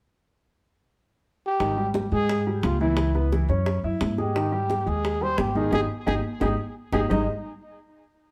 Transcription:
1.46 1.92 G4 medium
1.60 2.08 G#1 medium
1.60 1.74 D#3 medium
1.60 1.74 D#4 medium
1.60 high bongo medium
1.60 high conga soft
1.77 2.05 G3 medium
1.77 2.06 G4 medium
1.77 high conga soft
1.94 high bongo medium
1.94 high conga medium
2.12 2.59 G#2 medium
2.12 2.40 G#3 medium
2.12 2.40 G#4 medium
2.12 2.44 G#4 loud
2.12 high conga soft
2.29 high bongo medium
2.29 high conga soft
2.47 2.75 G3 medium
2.47 2.75 G4 medium
2.47 high conga soft
2.63 3.43 C#2 medium
2.63 2.79 F4 medium
2.63 high bongo medium
2.63 low bongo medium
2.63 high conga medium
2.81 3.09 E3 medium
2.81 3.09 E4 medium
2.81 3.29 E4 medium
2.81 high conga medium
2.97 high bongo medium
2.97 high conga soft
3.15 3.29 B3 medium
3.15 3.29 B4 medium
3.15 high bongo soft
3.15 high conga soft
3.32 3.46 E3 medium
3.32 3.46 E4 medium
3.32 high bongo medium
3.32 high conga medium
3.48 3.81 F#2 medium
3.48 3.77 C#4 medium
3.48 3.77 C#5 medium
3.48 high bongo soft
3.48 high conga soft
3.66 high bongo medium
3.66 high conga soft
3.83 3.99 F#2 medium
3.83 4.12 E4 medium
3.83 4.12 E5 medium
3.83 high conga soft
4.01 4.81 G#2 medium
4.01 high bongo medium
4.01 low bongo medium
4.01 high conga medium
4.18 4.32 G#3 medium
4.18 4.89 G4 medium
4.18 4.32 G#4 medium
4.18 high bongo soft
4.18 high conga medium
4.35 4.49 D#3 medium
4.35 4.49 D#4 medium
4.35 high bongo medium
4.35 high conga soft
4.52 4.80 G3 medium
4.52 4.80 G4 medium
4.52 high conga soft
4.70 high bongo medium
4.70 high conga medium
4.86 5.35 D#2 medium
4.86 5.15 G#3 medium
4.86 5.15 G#4 medium
4.86 5.24 G#4 medium
4.86 high conga soft
5.04 high bongo medium
5.04 high conga soft
5.21 5.49 G3 medium
5.21 5.49 G4 medium
5.21 5.41 C5 loud
5.21 high conga soft
5.38 5.70 G#1 medium
5.38 5.58 G4 medium
5.38 high bongo medium
5.38 low bongo medium
5.38 high conga medium
5.55 5.69 D#3 medium
5.55 5.70 D#4 medium
5.55 5.73 G#4 medium
5.55 high conga medium
5.72 5.85 G#1 medium
5.72 5.84 D#4 medium
5.72 5.84 G4 medium
5.72 5.84 G#4 medium
5.72 5.81 G#4 loud
5.72 low bongo loud
5.72 high conga medium
6.06 6.20 G#1 medium
6.06 6.18 D#4 medium
6.06 6.18 G4 medium
6.06 6.18 G#4 medium
6.06 6.15 G#4 medium
6.06 low bongo medium
6.06 high conga medium
6.41 6.54 G#1 loud
6.41 6.52 D#4 medium
6.41 6.52 G4 medium
6.41 6.49 G#4 medium
6.41 6.52 G#4 medium
6.41 low bongo loud
6.41 high conga loud
6.92 7.06 G#1 loud
6.92 7.04 D#4 medium
6.92 7.04 G4 loud
6.92 7.01 G#4 medium
6.92 7.04 G#4 medium
6.92 low bongo medium
6.92 high conga medium
7.09 7.26 G#1 medium
7.09 7.26 G#3 medium
7.09 7.26 D#4 medium
7.09 7.26 G4 medium
7.09 7.26 G#4 medium
7.09 7.26 C5 medium
7.09 7.26 D#5 medium
7.09 low bongo loud
7.09 low conga medium

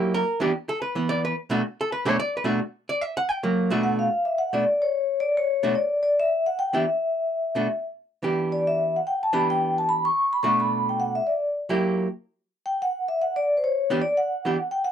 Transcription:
0.00 0.22 F#3 medium
0.00 0.22 A#3 medium
0.00 0.22 E4 medium
0.00 0.14 G4 medium
0.14 0.41 A#4 medium
0.40 0.51 E3 medium
0.40 0.51 B3 medium
0.40 0.51 D4 medium
0.40 0.51 G4 medium
0.69 0.80 A4 medium
0.82 0.96 B4 medium
0.95 1.32 E3 medium
0.95 1.32 B3 medium
1.09 1.24 D5 loud
1.25 1.35 B4 medium
1.50 1.60 B2 medium
1.50 1.61 A3 medium
1.50 1.61 D4 medium
1.50 1.61 F#4 medium
1.81 1.90 A4 medium
1.92 2.06 B4 medium
2.05 2.16 B2 medium
2.05 2.16 A3 medium
2.05 2.16 D4 medium
2.05 2.09 F#4 medium
2.05 2.18 C#5 loud
2.20 2.34 D5 loud
2.37 2.45 B4 medium
2.44 2.59 B2 medium
2.44 2.59 A3 medium
2.44 2.59 D4 medium
2.44 2.59 F#4 medium
2.89 3.01 D5 loud
3.01 3.16 E5 medium
3.17 3.29 F#5 loud
3.29 3.43 G5 loud
3.43 3.69 F#3 medium
3.43 3.69 A#3 medium
3.70 4.07 B2 medium
3.70 4.07 A3 medium
3.70 4.08 D4 medium
3.70 4.08 F#4 medium
3.83 3.98 F#5 medium
3.99 4.27 F5 medium
4.25 4.37 E5 medium
4.38 4.45 F#5 medium
4.53 4.63 B2 medium
4.53 4.63 A3 medium
4.53 4.64 D4 medium
4.53 4.64 F#4 medium
4.53 4.82 D5 medium
4.82 5.18 C#5 medium
5.20 5.35 D5 medium
5.37 5.77 C#5 medium
5.63 5.74 B2 medium
5.63 5.74 A3 medium
5.63 5.74 D4 medium
5.63 5.74 F#4 medium
5.75 6.02 D5 medium
6.03 6.19 D5 medium
6.20 6.45 E5 medium
6.46 6.52 F#5 medium
6.59 6.75 G5 loud
6.73 6.84 E3 medium
6.73 6.84 B3 medium
6.73 6.84 D4 medium
6.73 6.84 G4 medium
6.73 7.81 E5 medium
7.55 7.66 B2 medium
7.55 7.66 A3 medium
7.55 7.67 D4 medium
7.55 7.67 F#4 medium
8.23 8.99 E3 medium
8.23 8.99 B3 medium
8.23 8.99 D4 medium
8.23 8.99 G4 medium
8.52 8.59 D5 medium
8.67 8.95 E5 medium
8.96 9.06 F#5 medium
9.07 9.21 G5 medium
9.23 9.28 A5 medium
9.33 10.09 E3 medium
9.33 10.09 B3 medium
9.33 10.09 D4 medium
9.33 10.09 G4 medium
9.33 9.49 B5 loud
9.50 9.75 G5 medium
9.78 9.83 A5 medium
9.89 10.05 B5 loud
10.05 10.30 C#6 medium
10.33 10.44 B5 medium
10.43 11.19 B2 medium
10.43 11.20 A3 medium
10.43 11.20 D4 medium
10.43 11.20 F#4 medium
10.43 10.50 C#6 loud
10.60 10.88 B5 medium
10.89 10.94 G5 medium
11.00 11.07 F#5 medium
11.15 11.27 E5 medium
11.27 11.52 D5 medium
11.69 12.06 F#3 medium
11.69 12.07 A#3 medium
11.69 12.07 E4 medium
11.69 12.07 G4 medium
12.66 12.73 G5 medium
12.82 13.07 F#5 medium
13.09 13.20 E5 medium
13.22 13.35 F#5 medium
13.36 13.56 D5 medium
13.57 13.64 C5 medium
13.64 13.89 C#5 medium
13.90 14.01 E3 medium
13.90 14.01 B3 medium
13.90 14.01 D4 medium
13.90 14.01 G4 medium
14.02 14.17 D5 medium
14.17 14.74 F#5 medium
14.45 14.56 E3 medium
14.45 14.56 B3 medium
14.45 14.56 D4 medium
14.45 14.56 G4 medium
14.71 14.84 G5 medium
14.84 14.92 F#5 loud

